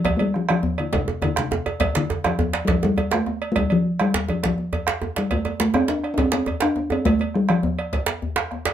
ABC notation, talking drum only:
X:1
M:12/8
L:1/16
Q:3/8=137
K:F
V:1 name="Talking drum" clef=bass
F,3/2 A,/2 G,2 F,2 F,4 D,2 C,4 D,2 C,4- C,/2 z3/2 | z2 D,4 F,4- F,3/2 G,/2 F,2 G,4 A,4- A,3/2 A,/2 | G,2 F,4 G,4 F,2 F,8- F,2 G,2 | A,4 A,2 C2 D3- D/2 D/2 C2 C4 D4 C2 |
A,4 G,2 F,6 z12 |]